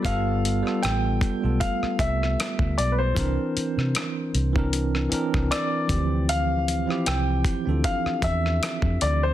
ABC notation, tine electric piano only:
X:1
M:4/4
L:1/16
Q:"Swing 16ths" 1/4=77
K:Gdor
V:1 name="Tine electric piano"
[G,=B,FA]3 [G,B,FA]3 z [G,A,B,FA]6- [G,A,B,FA] z2 | [E,CDB]6 z [E,CDB]3 [E,CDB]4 [E,F,CG]2- | [E,F,CG]2 z [F,CEG]3 z [E,CDFA]6- [E,CDFA] z2 |]